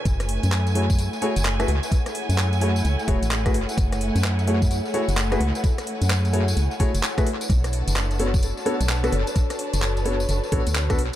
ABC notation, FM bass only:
X:1
M:4/4
L:1/16
Q:"Swing 16ths" 1/4=129
K:F#m
V:1 name="FM bass" clef=bass
F,,,3 F,,6 z2 F,,,3 C,, z | z3 F,,4- F,, C,, z E,,, A,,,3 F,,, z | F,,,3 F,,6 z2 F,,,3 C,, z | z3 F,,4- F,, C,, z2 F,,, z4 |
B,,,3 F,,,6 z2 B,,,3 F,,, z | z3 F,,,4- F,,, F,,, z A,,, D,,3 B,,, z |]